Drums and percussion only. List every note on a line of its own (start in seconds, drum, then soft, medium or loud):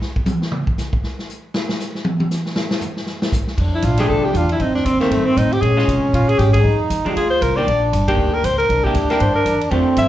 0.01 snare soft
0.16 kick medium
0.26 hi-hat pedal medium
0.26 high tom loud
0.42 snare medium
0.52 mid tom loud
0.67 kick medium
0.78 snare soft
0.78 hi-hat pedal medium
0.93 kick medium
1.03 snare soft
1.19 snare soft
1.29 hi-hat pedal medium
1.54 snare loud
1.69 snare loud
1.80 snare soft
1.80 hi-hat pedal medium
1.95 snare soft
2.05 high tom loud
2.20 high tom medium
2.31 snare soft
2.31 hi-hat pedal medium
2.46 snare medium
2.56 snare medium
2.71 snare loud
2.81 floor tom medium
2.81 hi-hat pedal medium
2.97 snare soft
3.07 snare medium
3.22 snare loud
3.32 kick medium
3.32 hi-hat pedal medium
3.47 snare soft
3.58 kick medium
3.58 crash medium
3.82 kick soft
3.82 hi-hat pedal medium
3.82 ride medium
3.97 snare soft
3.97 ride medium
4.09 kick soft
4.34 kick soft
4.34 hi-hat pedal medium
4.34 ride medium
4.49 ride soft
4.60 kick soft
4.60 ride soft
4.76 snare soft
4.85 kick soft
4.85 hi-hat pedal medium
4.85 ride medium
5.01 snare soft
5.01 ride soft
5.11 kick soft
5.11 ride medium
5.37 kick soft
5.37 hi-hat pedal soft
5.37 ride medium
5.52 ride soft
5.62 kick soft
5.62 ride medium
5.78 snare soft
5.88 kick soft
5.88 hi-hat pedal medium
5.88 ride medium
6.13 kick soft
6.13 ride medium
6.29 ride soft
6.39 kick soft
6.39 hi-hat pedal medium
6.39 ride medium
6.54 kick medium
6.54 ride medium
6.90 kick soft
6.90 hi-hat pedal medium
6.90 ride medium
7.06 ride soft
7.16 kick soft
7.16 ride medium
7.42 kick soft
7.42 hi-hat pedal medium
7.42 ride medium
7.67 kick soft
7.67 ride medium
7.93 kick soft
7.93 hi-hat pedal medium
7.93 ride medium
8.08 kick medium
8.08 ride medium
8.44 kick soft
8.44 hi-hat pedal medium
8.44 ride medium
8.60 ride soft
8.69 kick soft
8.69 ride soft
8.85 kick medium
8.95 kick soft
8.95 hi-hat pedal medium
8.95 ride medium
9.10 snare soft
9.10 ride soft
9.20 kick soft
9.20 ride medium
9.46 kick soft
9.46 hi-hat pedal medium
9.46 ride medium
9.61 ride soft
9.71 kick soft
9.71 ride soft
9.97 kick soft
9.97 hi-hat pedal medium
9.97 ride medium